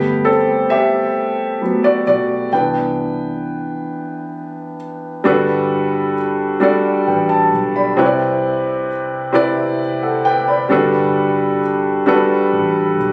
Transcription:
Already playing: G1 G3 A3 B3 G4
0.25 C4 A4
0.70 G4 E5
1.61 F#3 A3 B3
1.84 F#4 D5
2.07 B1 F#4 D5
2.53 C2 E3 B3 D4 B4 G5
5.24 G1 G3 D4 F#4 A4 B4
6.60 G3 D4 F#4 A4 D5
7.07 A1 B4 G5
7.29 A5
7.53 B1
7.76 D5 B5
7.97 C2 C3 C4 E4 B4 C#5
8.06 D5
9.33 C3 C4 E4 B4 D5
10.03 A4 F#5
10.25 B4 G5
10.48 D5 B5
10.69 G1 G3 D4 F#4 A4 B4
12.06 G3 D4 F#4 A4 B4
12.53 A1
12.98 B1

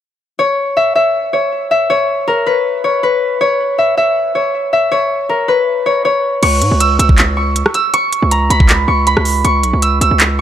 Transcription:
0.39 C#5
0.77 E5
0.95 E5
1.33 C#5
1.71 E5
1.90 C#5
2.28 A#4
2.46 B4
2.84 C#5
3.03 B4
3.41 C#5
3.78 E5
3.97 E5
4.35 C#5
4.73 E5
4.92 C#5
5.29 A#4
5.48 B4
5.86 C#5
6.05 C#5
6.43 C#2 C#6, closed hi-hat, crash
6.61 G#2, closed hi-hat
6.71 C#2
6.80 E6, closed hi-hat
6.99 C#2 E6, closed hi-hat
7.09 kick
7.18 clap, closed hi-hat
7.37 C#6
7.56 closed hi-hat
7.66 cross-stick
7.74 E6, closed hi-hat
7.94 C#6, closed hi-hat
8.13 closed hi-hat
8.22 C#2
8.31 A#5, closed hi-hat
8.50 C#2 B5, closed hi-hat
8.60 kick
8.69 clap, closed hi-hat
8.88 C#2 C#6
9.07 B5, closed hi-hat
9.17 C#2, cross-stick
9.25 open hi-hat
9.45 C#2 C#6, closed hi-hat
9.63 B1, closed hi-hat
9.73 C#2
9.82 E6, closed hi-hat
10.01 C#2 E6, closed hi-hat
10.11 C#2
10.20 clap, closed hi-hat

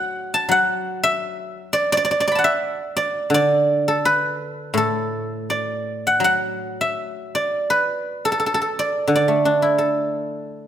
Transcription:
Already playing: F#3 F#4 A4 F#5
0.34 A5
0.49 F#3 F#5
1.03 E5
1.73 D5
1.92 D5
1.97 D5
2.05 D5
2.11 D5
2.20 D5
2.28 D5 D6
2.32 A5 B5
2.38 F#5
2.44 E5
2.97 D5
3.30 D3
3.34 D5
3.88 A4
4.05 B4
4.74 A2 A4
5.50 D5
6.07 F#5
6.20 F#3
6.24 F#5
6.81 E5
7.35 D5
7.70 B4
8.25 A4
8.32 A4
8.40 A4
8.46 A4
8.54 A4
8.62 A4
8.79 D5
9.07 D3
9.15 D5
9.28 A3
9.45 D4
9.62 E4
9.78 A4

